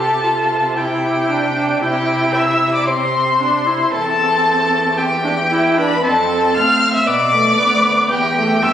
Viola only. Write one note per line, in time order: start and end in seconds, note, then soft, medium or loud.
0.00 0.24 G4 medium
0.23 0.77 F4 soft
0.75 1.30 E4 soft
1.29 1.54 D4 medium
1.55 1.83 D4 medium
1.81 2.89 E4 soft
2.87 3.41 C4 medium
3.40 3.67 D4 medium
3.66 3.94 E4 medium
3.92 4.96 C4 medium
4.97 5.05 C4 medium
5.24 5.32 D4 medium
5.50 5.79 E4 medium
5.77 6.02 D4 medium
6.03 6.54 C4 medium
6.55 7.05 C4 medium
7.06 7.14 B3 medium
7.32 7.60 A3 medium
7.58 8.10 B3 medium
8.10 8.18 B3 medium
8.36 8.62 A3 medium
8.63 8.73 B3 medium